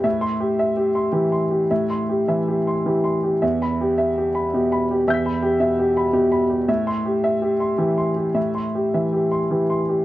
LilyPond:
<<
  \new Staff \with { instrumentName = "Grand piano" } { \time 3/4 \key a \dorian \tempo 4 = 108 << { \tuplet 3/2 { r8 c'''4 } r2 | r2. | \tuplet 3/2 { r8 b''4 } r2 | <e''' g''' b'''>2. |
\tuplet 3/2 { r8 c'''4 } r2 | r2. | } \\ { \tuplet 3/2 { e''4 g'8 e''8 g'8 c'''8 g'8 c'''8 g'8 } | \tuplet 3/2 { e''8 c'''8 g'8 e''8 g'8 c'''8 g'8 c'''8 g'8 } | \tuplet 3/2 { e''4 g'8 e''8 g'8 b''8 g'8 b''8 g'8 } | \tuplet 3/2 { e''8 b''8 g'8 e''8 g'8 b''8 g'8 b''8 g'8 } |
\tuplet 3/2 { e''4 g'8 e''8 g'8 c'''8 g'8 c'''8 g'8 } | \tuplet 3/2 { e''8 c'''8 g'8 e''8 g'8 c'''8 g'8 c'''8 g'8 } | } >> }
  \new Staff \with { instrumentName = "Grand piano" } { \clef bass \time 3/4 \key a \dorian a,2 e4 | a,4 e4 e4 | e,2 b,4 | e,4 b,4 b,4 |
a,2 e4 | a,4 e4 e4 | }
>>